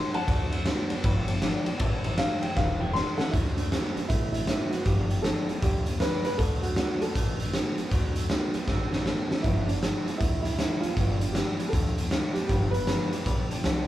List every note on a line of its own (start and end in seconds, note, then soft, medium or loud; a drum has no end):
0.00 0.12 A2 medium
0.00 0.14 A2 medium
0.00 0.14 E3 medium
0.00 0.12 F#3 medium
0.00 0.15 G3 medium
0.00 0.14 C#4 medium
0.00 0.12 E4 medium
0.00 0.14 C6 loud
0.12 0.27 A2 medium
0.12 0.27 F#3 medium
0.12 0.28 E4 medium
0.12 0.22 C#5 medium
0.12 0.22 E5 medium
0.12 0.22 F#5 medium
0.12 0.87 F#5 loud
0.12 0.89 A5 loud
0.12 muted upright bass stroke medium
0.12 ride medium
0.17 0.28 G3 soft
0.27 0.72 D2 loud
0.27 0.53 D3 medium
0.27 0.51 D3 loud
0.27 0.53 A3 medium
0.27 0.51 A3 loud
0.27 0.53 C4 medium
0.27 0.51 F#4 loud
0.27 0.42 D5 medium
0.27 0.42 F#5 medium
0.27 0.43 A5 loud
0.27 kick loud
0.27 ride medium
0.51 0.65 D3 medium
0.51 0.66 A3 medium
0.51 0.66 C4 medium
0.51 0.66 F#4 medium
0.51 0.60 D5 medium
0.51 0.60 F#5 medium
0.51 0.61 C6 medium
0.51 ride medium
0.56 0.65 A3 soft
0.66 0.90 D3 loud
0.66 0.89 D3 medium
0.66 0.91 A3 loud
0.66 0.89 B3 loud
0.66 0.90 C4 loud
0.66 0.89 F#4 loud
0.66 0.81 D5 loud
0.66 0.81 F#5 medium
0.66 0.81 C6 loud
0.66 snare loud
0.66 ride medium
0.89 1.03 D3 medium
0.89 1.04 B3 medium
0.89 1.05 C4 soft
0.89 1.04 F#4 medium
0.89 0.98 D5 loud
0.89 0.98 F#5 medium
0.89 0.99 A5 loud
0.89 muted upright bass stroke medium
0.89 ride medium
0.93 1.05 A3 soft
1.02 1.48 G1 loud
1.02 1.26 G2 medium
1.02 1.27 D3 medium
1.02 1.29 F3 medium
1.02 1.29 G3 medium
1.02 1.18 D5 loud
1.02 1.18 G5 loud
1.02 1.19 B5 loud
1.02 kick loud
1.02 ride medium
1.07 1.28 B3 medium
1.07 1.27 G4 medium
1.28 1.41 G2 medium
1.28 1.42 D3 medium
1.28 1.41 F3 medium
1.28 1.42 G3 medium
1.28 1.42 B3 medium
1.28 1.42 G4 medium
1.28 1.37 D5 medium
1.28 1.37 G5 medium
1.28 1.37 A5 loud
1.28 ride medium
1.42 1.67 G2 medium
1.42 1.64 G2 medium
1.42 1.67 D3 medium
1.42 1.65 E3 medium
1.42 1.67 F3 loud
1.42 1.67 G3 loud
1.42 1.66 B3 loud
1.42 1.65 G4 loud
1.42 1.57 D5 medium
1.42 1.57 G5 medium
1.42 1.57 D6 loud
1.42 snare loud
1.42 ride medium
1.66 1.79 G2 medium
1.66 1.79 E3 medium
1.66 1.80 F3 medium
1.66 1.80 G3 medium
1.66 1.81 B3 medium
1.66 1.80 G4 medium
1.66 1.76 D5 medium
1.66 1.76 G5 medium
1.66 1.76 D6 loud
1.66 muted upright bass stroke medium
1.66 ride medium
1.79 2.24 A1 loud
1.79 2.05 A2 loud
1.79 2.03 A2 medium
1.79 2.05 E3 loud
1.79 2.03 E3 medium
1.79 2.06 G3 medium
1.79 2.05 C#4 loud
1.79 2.03 G4 loud
1.79 1.95 C#5 loud
1.79 1.96 E5 loud
1.79 1.96 A5 loud
1.79 kick loud
1.79 ride medium
2.04 2.17 A2 medium
2.04 2.17 E3 loud
2.04 2.17 G3 medium
2.04 2.18 C#4 medium
2.04 2.18 G4 medium
2.04 2.13 C#5 loud
2.04 2.13 E5 medium
2.04 2.13 A5 loud
2.04 ride medium
2.17 2.43 A2 medium
2.17 2.41 A2 medium
2.17 2.43 E3 loud
2.17 2.41 F#3 loud
2.17 2.43 G3 loud
2.17 2.43 C#4 medium
2.17 2.41 G4 loud
2.17 2.33 C#5 medium
2.17 2.34 E5 medium
2.17 2.42 F5 loud
2.17 2.34 A5 medium
2.17 snare loud
2.17 ride medium
2.42 2.55 A2 medium
2.42 2.56 F#3 medium
2.42 2.56 G3 soft
2.42 2.57 C#4 soft
2.42 2.57 G4 soft
2.42 2.52 C#5 medium
2.42 2.52 E5 medium
2.42 2.56 G5 medium
2.42 2.52 A5 medium
2.42 muted upright bass stroke medium
2.42 ride medium
2.56 3.00 E1 medium
2.56 2.79 A2 medium
2.56 2.81 E3 medium
2.56 2.79 E3 loud
2.56 2.82 G3 medium
2.56 2.82 C#4 medium
2.56 2.80 G4 medium
2.56 2.71 C#5 loud
2.56 2.72 E5 medium
2.56 2.81 F5 medium
2.56 2.72 F#5 loud
2.56 kick loud
2.56 snare medium
2.80 2.94 A2 medium
2.80 2.94 E3 medium
2.80 2.95 C#4 soft
2.80 2.95 G4 medium
2.80 2.89 C#5 medium
2.80 2.89 E5 medium
2.80 2.94 G5 medium
2.80 2.89 A5 loud
2.85 2.95 G3 soft
2.93 3.19 A2 medium
2.93 3.17 A2 medium
2.93 3.20 E3 medium
2.93 3.17 F#3 loud
2.93 3.20 G3 medium
2.93 3.20 C#4 medium
2.93 3.18 G4 medium
2.93 3.09 C#5 medium
2.93 3.09 E5 medium
2.93 3.10 A5 medium
2.93 3.18 C6 loud
2.93 snare medium
3.17 3.32 A2 medium
3.17 3.32 F#3 medium
3.17 3.31 A4 medium
3.17 3.27 C#5 medium
3.17 3.28 E5 medium
3.17 3.32 F#5 loud
3.17 3.28 A5 medium
3.17 muted upright bass stroke medium
3.17 snare medium
3.23 3.34 G3 medium
3.31 3.77 D2 loud
3.31 3.56 D3 medium
3.31 3.58 D3 medium
3.31 3.56 A3 medium
3.31 3.58 A3 medium
3.31 3.37 E4 medium
3.31 kick loud
3.31 closed hi-hat medium
3.36 3.59 C4 medium
3.36 3.57 F#4 medium
3.56 3.70 D3 medium
3.56 3.70 A3 medium
3.56 3.72 C4 medium
3.56 3.93 D4 medium
3.56 3.72 F#4 medium
3.56 closed hi-hat medium
3.62 3.72 A3 soft
3.71 3.93 D3 medium
3.71 3.96 D3 medium
3.71 3.97 A3 medium
3.71 3.94 B3 loud
3.71 3.97 C4 medium
3.71 3.95 F#4 loud
3.71 snare medium
3.71 closed hi-hat medium
3.95 4.08 D3 medium
3.95 4.09 B3 medium
3.95 4.11 C4 soft
3.95 4.10 D4 medium
3.95 4.10 F#4 soft
3.95 muted upright bass stroke medium
3.95 closed hi-hat medium
4.00 4.10 A3 soft
4.08 4.54 A1 medium
4.08 4.32 D3 medium
4.08 4.34 D3 medium
4.08 4.32 A3 medium
4.08 4.35 A3 medium
4.08 4.31 E4 medium
4.08 kick loud
4.08 closed hi-hat loud
4.13 4.35 C4 medium
4.13 4.33 F#4 medium
4.32 4.46 D3 medium
4.32 4.47 A3 medium
4.32 4.73 E4 medium
4.32 4.48 F#4 medium
4.32 closed hi-hat medium
4.36 4.48 A3 soft
4.36 4.48 C4 medium
4.47 4.70 D3 medium
4.47 4.72 D3 medium
4.47 4.73 A3 medium
4.47 4.70 B3 medium
4.47 4.72 C4 medium
4.47 4.70 F#4 medium
4.47 snare loud
4.47 closed hi-hat medium
4.70 4.85 D3 medium
4.70 4.85 B3 medium
4.70 4.87 C4 soft
4.70 4.85 F#4 medium
4.70 4.86 F#4 medium
4.70 muted upright bass stroke medium
4.70 closed hi-hat medium
4.75 4.87 A3 soft
4.84 5.30 G1 loud
4.84 5.10 G2 medium
4.84 5.08 G2 medium
4.84 5.08 D3 loud
4.84 5.11 D3 medium
4.84 5.11 F3 medium
4.84 5.11 G3 medium
4.84 5.11 B3 medium
4.84 5.25 G4 medium
4.84 kick loud
4.84 closed hi-hat medium
4.89 5.09 G4 medium
5.10 5.23 G2 medium
5.10 5.23 D3 medium
5.10 5.24 F3 medium
5.10 5.25 G3 soft
5.10 5.25 B3 medium
5.10 5.24 G4 medium
5.10 closed hi-hat medium
5.22 5.49 G2 medium
5.22 5.46 G2 medium
5.22 5.49 D3 medium
5.22 5.47 E3 medium
5.22 5.49 F3 medium
5.22 5.50 G3 medium
5.22 5.48 B3 medium
5.22 5.63 A4 medium
5.22 snare loud
5.22 closed hi-hat medium
5.27 5.47 G4 medium
5.49 5.62 G2 medium
5.49 5.62 E3 medium
5.49 5.61 F3 soft
5.49 5.62 G3 soft
5.49 5.63 B3 medium
5.49 5.62 G4 soft
5.49 muted upright bass stroke medium
5.49 closed hi-hat medium
5.62 6.06 D2 medium
5.62 5.85 G2 medium
5.62 5.85 D3 medium
5.62 5.87 F3 medium
5.62 5.88 G3 medium
5.62 5.87 B3 medium
5.62 5.98 G4 loud
5.62 5.86 G4 medium
5.62 kick loud
5.62 closed hi-hat medium
5.86 5.99 G2 medium
5.86 6.00 D3 medium
5.86 6.01 G3 soft
5.86 6.01 B3 soft
5.86 6.01 G4 medium
5.86 closed hi-hat medium
5.91 6.00 F3 soft
6.00 6.25 G2 medium
6.00 6.23 G2 medium
6.00 6.25 D3 medium
6.00 6.23 E3 medium
6.00 6.26 F3 medium
6.00 6.26 G3 loud
6.00 6.25 B3 medium
6.00 6.24 G4 medium
6.00 6.23 B4 loud
6.00 snare loud
6.00 closed hi-hat medium
6.25 6.38 G2 medium
6.25 6.38 E3 medium
6.25 6.40 G3 soft
6.25 6.39 B3 medium
6.25 6.39 B4 loud
6.25 muted upright bass stroke medium
6.25 closed hi-hat medium
6.29 6.39 F3 soft
6.38 6.83 D2 loud
6.38 6.63 D3 medium
6.38 6.61 D3 medium
6.38 6.61 A3 loud
6.38 6.64 A3 medium
6.38 6.64 C4 medium
6.38 6.62 F#4 medium
6.38 6.64 A4 loud
6.38 kick loud
6.38 closed hi-hat medium
6.62 6.76 D3 medium
6.62 6.76 A3 medium
6.62 6.78 C4 medium
6.62 6.76 F#4 loud
6.62 6.77 F#4 medium
6.62 closed hi-hat medium
6.67 6.77 A3 medium
6.76 7.01 D3 medium
6.76 6.99 D3 medium
6.76 7.02 A3 medium
6.76 7.00 B3 medium
6.76 7.02 C4 medium
6.76 7.02 F#4 loud
6.76 7.01 F#4 loud
6.76 snare loud
6.76 closed hi-hat medium
7.01 7.14 D3 medium
7.01 7.14 B3 medium
7.01 7.17 C4 soft
7.01 7.16 F#4 medium
7.01 7.37 A4 loud
7.01 muted upright bass stroke medium
7.01 closed hi-hat medium
7.05 7.16 A3 soft
7.15 7.59 A1 medium
7.15 7.37 D3 medium
7.15 7.40 D3 medium
7.15 7.37 A3 medium
7.15 7.41 A3 medium
7.15 7.40 C4 medium
7.15 7.38 F#4 medium
7.15 kick loud
7.15 closed hi-hat medium
7.40 7.52 D3 medium
7.40 7.52 A3 medium
7.40 7.53 A3 soft
7.40 7.54 C4 soft
7.40 7.53 F#4 soft
7.40 closed hi-hat medium
7.53 7.78 D3 loud
7.53 7.75 D3 medium
7.53 7.78 A3 loud
7.53 7.76 B3 medium
7.53 7.78 C4 medium
7.53 7.76 F#4 loud
7.53 snare loud
7.53 closed hi-hat medium
7.78 7.91 D3 medium
7.78 7.91 B3 medium
7.78 7.92 C4 medium
7.78 7.91 F#4 medium
7.78 muted upright bass stroke medium
7.78 closed hi-hat medium
7.91 8.35 D2 loud
7.91 8.16 D3 loud
7.91 8.14 D3 medium
7.91 8.14 A3 medium
7.91 8.16 A3 medium
7.91 8.17 C4 loud
7.91 8.15 F#4 loud
7.91 kick loud
7.91 closed hi-hat medium
8.16 8.29 D3 medium
8.16 8.29 A3 medium
8.16 8.30 A3 medium
8.16 8.30 C4 medium
8.16 8.30 F#4 medium
8.16 closed hi-hat medium
8.30 8.54 D3 loud
8.30 8.52 D3 medium
8.30 8.55 A3 loud
8.30 8.52 B3 medium
8.30 8.55 C4 loud
8.30 8.54 F#4 loud
8.30 snare loud
8.30 closed hi-hat medium
8.54 8.67 D3 medium
8.54 8.67 B3 medium
8.54 8.69 C4 medium
8.54 8.68 F#4 medium
8.54 muted upright bass stroke medium
8.54 closed hi-hat medium
8.58 8.68 A3 soft
8.67 9.11 A1 medium
8.67 8.92 D3 medium
8.67 8.90 D3 medium
8.67 8.90 A3 medium
8.67 8.93 A3 medium
8.67 8.92 C4 medium
8.67 8.91 F#4 medium
8.67 kick loud
8.67 snare medium
8.92 9.04 D3 medium
8.92 9.05 A3 medium
8.92 9.05 A3 soft
8.92 9.06 C4 soft
8.92 9.06 F#4 medium
8.92 snare medium
9.05 9.28 D3 medium
9.05 9.30 D3 loud
9.05 9.31 A3 medium
9.05 9.28 B3 medium
9.05 9.31 C4 medium
9.05 9.28 F#4 medium
9.05 snare medium
9.30 9.42 D3 medium
9.30 9.45 A3 medium
9.30 9.43 B3 medium
9.30 9.45 C4 medium
9.30 9.44 F#4 medium
9.30 muted upright bass stroke medium
9.30 snare medium
9.43 9.88 G1 medium
9.43 9.68 G2 medium
9.43 9.66 G2 medium
9.43 9.68 D3 medium
9.43 9.66 D3 loud
9.43 9.69 F3 medium
9.43 9.69 G3 medium
9.43 9.67 B3 medium
9.43 9.69 E4 medium
9.43 9.66 G4 medium
9.43 kick loud
9.43 closed hi-hat medium
9.66 9.81 G2 medium
9.66 9.81 D3 medium
9.66 9.83 G3 medium
9.66 9.82 B3 medium
9.66 10.21 D4 loud
9.66 9.82 G4 medium
9.66 closed hi-hat medium
9.71 9.82 F3 soft
9.82 10.07 G2 medium
9.82 10.04 G2 medium
9.82 10.07 D3 medium
9.82 10.05 E3 medium
9.82 10.07 F3 medium
9.82 10.07 G3 medium
9.82 10.06 B3 medium
9.82 10.04 G4 loud
9.82 snare loud
9.82 closed hi-hat medium
10.06 10.19 G2 medium
10.06 10.19 E3 medium
10.06 10.19 F3 soft
10.06 10.20 G3 soft
10.06 10.21 B3 soft
10.06 10.20 G4 soft
10.06 muted upright bass stroke medium
10.06 closed hi-hat medium
10.18 10.64 D2 medium
10.18 10.42 G2 medium
10.18 10.43 D3 medium
10.18 10.45 F3 medium
10.18 10.45 G3 medium
10.18 10.41 E4 medium
10.18 kick loud
10.18 closed hi-hat medium
10.23 10.45 B3 medium
10.23 10.44 G4 medium
10.42 10.57 G2 medium
10.42 10.57 D3 medium
10.42 10.58 B3 soft
10.42 10.79 E4 loud
10.42 10.59 G4 medium
10.42 closed hi-hat medium
10.47 10.58 F3 soft
10.47 10.58 G3 soft
10.58 10.83 G2 medium
10.58 10.81 G2 medium
10.58 10.83 D3 medium
10.58 10.81 E3 medium
10.58 10.83 F3 medium
10.58 10.83 G3 medium
10.58 10.83 B3 medium
10.58 10.82 G4 medium
10.58 snare loud
10.58 closed hi-hat medium
10.81 10.95 G2 medium
10.81 10.96 E3 medium
10.81 10.97 B3 medium
10.81 11.35 F4 loud
10.81 10.97 G4 medium
10.81 muted upright bass stroke medium
10.81 closed hi-hat medium
10.86 10.96 F3 soft
10.86 10.96 G3 medium
10.96 11.41 G1 loud
10.96 11.21 G2 medium
10.96 11.19 G2 medium
10.96 11.19 D3 medium
10.96 11.21 D3 medium
10.96 11.22 F3 medium
10.96 11.22 G3 medium
10.96 11.20 B3 medium
10.96 11.19 G4 medium
10.96 kick loud
10.96 closed hi-hat medium
11.20 11.33 G2 medium
11.20 11.34 D3 medium
11.20 11.35 F3 soft
11.20 11.35 G3 medium
11.20 11.35 B3 medium
11.20 11.35 G4 medium
11.20 closed hi-hat medium
11.32 11.57 G2 medium
11.32 11.59 G2 medium
11.32 11.60 D3 loud
11.32 11.57 E3 medium
11.32 11.69 G4 medium
11.32 snare loud
11.32 closed hi-hat medium
11.36 11.60 F3 medium
11.36 11.60 G3 medium
11.36 11.59 B3 medium
11.36 11.58 G4 loud
11.59 11.71 G2 medium
11.59 11.71 E3 medium
11.59 11.71 F3 soft
11.59 11.73 G3 soft
11.59 11.73 B3 medium
11.59 11.73 G4 soft
11.59 muted upright bass stroke medium
11.59 closed hi-hat medium
11.69 11.95 G2 medium
11.69 11.97 F3 medium
11.69 12.36 A4 medium
11.73 12.17 D2 medium
11.73 11.95 D3 medium
11.73 11.98 G3 medium
11.73 11.97 B3 medium
11.73 11.96 G4 medium
11.73 kick loud
11.73 closed hi-hat medium
11.97 12.10 G2 medium
11.97 12.10 D3 medium
11.97 12.11 F3 soft
11.97 12.11 G3 soft
11.97 12.12 B3 soft
11.97 12.11 G4 medium
11.97 closed hi-hat medium
12.11 12.35 G2 medium
12.11 12.33 G2 medium
12.11 12.36 D3 medium
12.11 12.33 E3 medium
12.11 12.36 F3 medium
12.11 12.36 G3 medium
12.11 12.36 B3 medium
12.11 12.34 G4 medium
12.11 snare loud
12.11 closed hi-hat medium
12.33 12.48 G2 medium
12.33 12.48 E3 medium
12.33 12.50 B3 medium
12.33 12.45 G4 medium
12.33 12.49 G4 medium
12.33 muted upright bass stroke medium
12.33 closed hi-hat medium
12.38 12.49 F3 soft
12.38 12.49 G3 medium
12.46 12.93 G1 loud
12.46 12.74 G2 medium
12.46 12.71 G2 loud
12.46 12.74 D3 medium
12.46 12.72 D3 loud
12.46 12.74 F3 medium
12.46 12.73 G4 loud
12.46 12.64 D5 medium
12.46 12.64 G5 medium
12.46 12.64 B5 loud
12.46 kick loud
12.46 closed hi-hat medium
12.51 12.74 G3 medium
12.51 12.74 B3 medium
12.51 12.72 G4 medium
12.71 12.86 G2 medium
12.71 12.87 D3 medium
12.71 12.87 G4 medium
12.71 13.87 B4 loud
12.71 12.83 D5 medium
12.71 closed hi-hat medium
12.75 12.88 F3 soft
12.75 12.88 G3 medium
12.75 12.88 B3 medium
12.75 12.83 G5 medium
12.75 12.83 B5 medium
12.87 13.10 G2 medium
12.87 13.12 G2 medium
12.87 13.12 D3 medium
12.87 13.10 E3 medium
12.87 13.13 F3 medium
12.87 13.13 G3 medium
12.87 13.12 B3 loud
12.87 13.11 G4 loud
12.87 13.02 D5 medium
12.87 13.03 G5 medium
12.87 13.03 B5 medium
12.87 snare loud
12.87 closed hi-hat medium
13.12 13.24 G2 medium
13.12 13.25 E3 medium
13.12 13.25 G3 soft
13.12 13.26 B3 soft
13.12 13.26 G4 soft
13.12 13.20 D5 medium
13.12 13.20 G5 medium
13.12 13.21 D6 medium
13.12 muted upright bass stroke medium
13.12 closed hi-hat medium
13.16 13.24 F3 soft
13.25 13.47 B1 loud
13.25 13.48 G2 medium
13.25 13.48 D3 medium
13.25 13.50 F3 medium
13.25 13.51 G3 medium
13.25 13.50 B3 medium
13.25 13.48 G4 medium
13.25 13.41 D5 loud
13.25 13.41 G5 loud
13.25 13.41 B5 loud
13.25 kick loud
13.25 closed hi-hat medium
13.50 13.63 G2 medium
13.50 13.63 D3 medium
13.50 13.64 F3 medium
13.50 13.64 G3 medium
13.50 13.65 B3 medium
13.50 13.64 G4 medium
13.50 13.59 D5 medium
13.50 13.59 G5 medium
13.50 13.59 A5 loud
13.50 muted upright bass stroke medium
13.50 closed hi-hat medium
13.64 13.85 C2 medium
13.64 13.86 G2 medium
13.64 13.87 G2 medium
13.64 13.87 D3 medium
13.64 13.86 E3 medium
13.64 13.87 F3 medium
13.64 13.87 G3 medium
13.64 13.87 B3 medium
13.64 13.87 G4 loud
13.64 13.79 D5 medium
13.64 13.79 G5 medium
13.64 13.80 A5 loud
13.64 snare loud
13.64 closed hi-hat medium